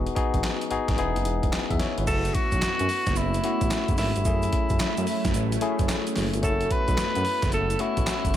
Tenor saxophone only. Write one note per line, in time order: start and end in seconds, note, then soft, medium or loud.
2.07 2.36 A4 loud
2.34 3.18 F#4 loud
3.17 3.98 E4 loud
3.98 6.12 E4 medium
6.44 6.73 A4 loud
6.72 7.53 B4 loud
7.54 7.83 A4 loud
7.81 8.37 E4 medium